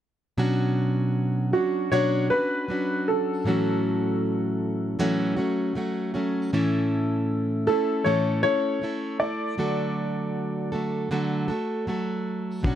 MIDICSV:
0, 0, Header, 1, 4, 480
1, 0, Start_track
1, 0, Tempo, 767263
1, 237, Time_signature, 4, 2, 24, 8
1, 7978, End_track
2, 0, Start_track
2, 0, Title_t, "Upright piano"
2, 0, Program_c, 0, 0
2, 959, Note_on_c, 0, 66, 75
2, 1199, Note_on_c, 0, 73, 88
2, 1207, Note_off_c, 0, 66, 0
2, 1440, Note_on_c, 0, 71, 82
2, 1447, Note_off_c, 0, 73, 0
2, 1896, Note_off_c, 0, 71, 0
2, 1927, Note_on_c, 0, 69, 66
2, 3820, Note_off_c, 0, 69, 0
2, 4800, Note_on_c, 0, 69, 74
2, 5032, Note_on_c, 0, 73, 84
2, 5047, Note_off_c, 0, 69, 0
2, 5264, Note_off_c, 0, 73, 0
2, 5273, Note_on_c, 0, 73, 96
2, 5753, Note_on_c, 0, 74, 77
2, 5770, Note_off_c, 0, 73, 0
2, 7645, Note_off_c, 0, 74, 0
2, 7978, End_track
3, 0, Start_track
3, 0, Title_t, "Steel-string acoustic guitar"
3, 0, Program_c, 1, 25
3, 235, Note_on_c, 1, 47, 76
3, 237, Note_on_c, 1, 54, 78
3, 239, Note_on_c, 1, 62, 75
3, 243, Note_on_c, 1, 61, 77
3, 247, Note_on_c, 1, 66, 84
3, 954, Note_off_c, 1, 66, 0
3, 957, Note_on_c, 1, 66, 39
3, 958, Note_off_c, 1, 47, 0
3, 960, Note_off_c, 1, 62, 0
3, 963, Note_off_c, 1, 61, 0
3, 966, Note_on_c, 1, 61, 42
3, 973, Note_on_c, 1, 62, 36
3, 1198, Note_off_c, 1, 62, 0
3, 1198, Note_on_c, 1, 47, 65
3, 1199, Note_off_c, 1, 66, 0
3, 1200, Note_off_c, 1, 54, 0
3, 1200, Note_off_c, 1, 61, 0
3, 1203, Note_on_c, 1, 54, 74
3, 1205, Note_on_c, 1, 62, 68
3, 1208, Note_on_c, 1, 61, 69
3, 1210, Note_on_c, 1, 66, 79
3, 1433, Note_off_c, 1, 66, 0
3, 1440, Note_off_c, 1, 47, 0
3, 1440, Note_on_c, 1, 66, 46
3, 1442, Note_off_c, 1, 54, 0
3, 1442, Note_off_c, 1, 61, 0
3, 1443, Note_off_c, 1, 62, 0
3, 1450, Note_on_c, 1, 61, 40
3, 1455, Note_on_c, 1, 62, 37
3, 1679, Note_on_c, 1, 54, 45
3, 1680, Note_off_c, 1, 62, 0
3, 1681, Note_off_c, 1, 66, 0
3, 1682, Note_off_c, 1, 61, 0
3, 1687, Note_on_c, 1, 62, 49
3, 1690, Note_on_c, 1, 61, 52
3, 1696, Note_on_c, 1, 66, 51
3, 2155, Note_on_c, 1, 45, 62
3, 2161, Note_on_c, 1, 52, 70
3, 2165, Note_off_c, 1, 54, 0
3, 2165, Note_off_c, 1, 62, 0
3, 2168, Note_on_c, 1, 54, 70
3, 2171, Note_off_c, 1, 61, 0
3, 2172, Note_on_c, 1, 57, 67
3, 2174, Note_on_c, 1, 61, 71
3, 2177, Note_off_c, 1, 66, 0
3, 2180, Note_on_c, 1, 66, 74
3, 3112, Note_off_c, 1, 45, 0
3, 3117, Note_off_c, 1, 54, 0
3, 3120, Note_off_c, 1, 52, 0
3, 3120, Note_on_c, 1, 45, 76
3, 3123, Note_off_c, 1, 66, 0
3, 3123, Note_on_c, 1, 52, 74
3, 3124, Note_on_c, 1, 54, 84
3, 3125, Note_off_c, 1, 57, 0
3, 3128, Note_off_c, 1, 61, 0
3, 3128, Note_on_c, 1, 57, 77
3, 3130, Note_on_c, 1, 61, 89
3, 3131, Note_on_c, 1, 66, 80
3, 3349, Note_off_c, 1, 66, 0
3, 3356, Note_off_c, 1, 61, 0
3, 3356, Note_on_c, 1, 66, 52
3, 3360, Note_off_c, 1, 57, 0
3, 3361, Note_off_c, 1, 45, 0
3, 3363, Note_off_c, 1, 52, 0
3, 3363, Note_off_c, 1, 54, 0
3, 3363, Note_on_c, 1, 61, 49
3, 3367, Note_on_c, 1, 57, 44
3, 3372, Note_on_c, 1, 54, 49
3, 3592, Note_off_c, 1, 54, 0
3, 3598, Note_off_c, 1, 57, 0
3, 3599, Note_off_c, 1, 66, 0
3, 3600, Note_on_c, 1, 54, 54
3, 3603, Note_off_c, 1, 61, 0
3, 3606, Note_on_c, 1, 57, 58
3, 3610, Note_on_c, 1, 61, 60
3, 3614, Note_on_c, 1, 66, 59
3, 3833, Note_off_c, 1, 66, 0
3, 3838, Note_off_c, 1, 61, 0
3, 3840, Note_on_c, 1, 66, 54
3, 3841, Note_off_c, 1, 54, 0
3, 3844, Note_off_c, 1, 57, 0
3, 3845, Note_on_c, 1, 61, 51
3, 3852, Note_on_c, 1, 57, 42
3, 3856, Note_on_c, 1, 54, 41
3, 4081, Note_off_c, 1, 66, 0
3, 4082, Note_off_c, 1, 57, 0
3, 4083, Note_off_c, 1, 61, 0
3, 4083, Note_on_c, 1, 45, 72
3, 4086, Note_on_c, 1, 52, 74
3, 4087, Note_off_c, 1, 54, 0
3, 4090, Note_on_c, 1, 57, 84
3, 4091, Note_on_c, 1, 61, 75
3, 4093, Note_on_c, 1, 64, 85
3, 4093, Note_on_c, 1, 69, 80
3, 4796, Note_off_c, 1, 69, 0
3, 4798, Note_off_c, 1, 64, 0
3, 4798, Note_on_c, 1, 69, 46
3, 4802, Note_off_c, 1, 45, 0
3, 4803, Note_off_c, 1, 52, 0
3, 4803, Note_off_c, 1, 61, 0
3, 4805, Note_on_c, 1, 64, 40
3, 4810, Note_on_c, 1, 61, 39
3, 4811, Note_off_c, 1, 57, 0
3, 4814, Note_on_c, 1, 57, 36
3, 5035, Note_off_c, 1, 57, 0
3, 5037, Note_off_c, 1, 61, 0
3, 5037, Note_on_c, 1, 45, 66
3, 5038, Note_off_c, 1, 64, 0
3, 5039, Note_off_c, 1, 69, 0
3, 5041, Note_on_c, 1, 52, 74
3, 5042, Note_on_c, 1, 57, 78
3, 5044, Note_on_c, 1, 61, 68
3, 5046, Note_on_c, 1, 64, 74
3, 5048, Note_on_c, 1, 69, 71
3, 5269, Note_off_c, 1, 69, 0
3, 5275, Note_off_c, 1, 64, 0
3, 5277, Note_on_c, 1, 69, 51
3, 5278, Note_off_c, 1, 45, 0
3, 5279, Note_off_c, 1, 61, 0
3, 5280, Note_off_c, 1, 52, 0
3, 5281, Note_off_c, 1, 57, 0
3, 5283, Note_on_c, 1, 64, 46
3, 5287, Note_on_c, 1, 61, 39
3, 5290, Note_on_c, 1, 57, 36
3, 5508, Note_off_c, 1, 57, 0
3, 5516, Note_off_c, 1, 61, 0
3, 5516, Note_on_c, 1, 57, 50
3, 5518, Note_off_c, 1, 69, 0
3, 5521, Note_off_c, 1, 64, 0
3, 5524, Note_on_c, 1, 61, 51
3, 5528, Note_on_c, 1, 64, 54
3, 5532, Note_on_c, 1, 69, 56
3, 5746, Note_off_c, 1, 69, 0
3, 5751, Note_off_c, 1, 64, 0
3, 5754, Note_on_c, 1, 69, 47
3, 5757, Note_off_c, 1, 57, 0
3, 5759, Note_on_c, 1, 64, 42
3, 5761, Note_off_c, 1, 61, 0
3, 5768, Note_on_c, 1, 57, 35
3, 5990, Note_off_c, 1, 57, 0
3, 5991, Note_on_c, 1, 50, 63
3, 5994, Note_on_c, 1, 54, 67
3, 5996, Note_off_c, 1, 69, 0
3, 5998, Note_off_c, 1, 64, 0
3, 5998, Note_on_c, 1, 57, 69
3, 6001, Note_on_c, 1, 66, 75
3, 6005, Note_on_c, 1, 69, 70
3, 6699, Note_off_c, 1, 69, 0
3, 6706, Note_on_c, 1, 69, 52
3, 6711, Note_off_c, 1, 66, 0
3, 6713, Note_on_c, 1, 66, 41
3, 6716, Note_off_c, 1, 57, 0
3, 6723, Note_on_c, 1, 57, 43
3, 6947, Note_off_c, 1, 50, 0
3, 6948, Note_off_c, 1, 57, 0
3, 6949, Note_off_c, 1, 66, 0
3, 6949, Note_on_c, 1, 50, 75
3, 6950, Note_off_c, 1, 54, 0
3, 6950, Note_off_c, 1, 69, 0
3, 6953, Note_on_c, 1, 54, 84
3, 6955, Note_on_c, 1, 57, 73
3, 6957, Note_on_c, 1, 66, 87
3, 6960, Note_on_c, 1, 69, 87
3, 7174, Note_off_c, 1, 69, 0
3, 7182, Note_on_c, 1, 69, 51
3, 7185, Note_off_c, 1, 66, 0
3, 7191, Note_off_c, 1, 50, 0
3, 7192, Note_on_c, 1, 66, 50
3, 7193, Note_off_c, 1, 54, 0
3, 7193, Note_off_c, 1, 57, 0
3, 7200, Note_on_c, 1, 57, 46
3, 7426, Note_off_c, 1, 57, 0
3, 7427, Note_off_c, 1, 69, 0
3, 7427, Note_on_c, 1, 54, 52
3, 7431, Note_off_c, 1, 66, 0
3, 7433, Note_on_c, 1, 57, 55
3, 7438, Note_on_c, 1, 66, 59
3, 7443, Note_on_c, 1, 69, 53
3, 7901, Note_on_c, 1, 47, 75
3, 7904, Note_off_c, 1, 54, 0
3, 7907, Note_on_c, 1, 54, 72
3, 7912, Note_off_c, 1, 57, 0
3, 7915, Note_on_c, 1, 62, 74
3, 7916, Note_off_c, 1, 66, 0
3, 7917, Note_off_c, 1, 69, 0
3, 7918, Note_on_c, 1, 61, 83
3, 7924, Note_on_c, 1, 66, 73
3, 7978, Note_off_c, 1, 47, 0
3, 7978, Note_off_c, 1, 54, 0
3, 7978, Note_off_c, 1, 61, 0
3, 7978, Note_off_c, 1, 62, 0
3, 7978, Note_off_c, 1, 66, 0
3, 7978, End_track
4, 0, Start_track
4, 0, Title_t, "Drums"
4, 7910, Note_on_c, 9, 36, 98
4, 7973, Note_off_c, 9, 36, 0
4, 7978, End_track
0, 0, End_of_file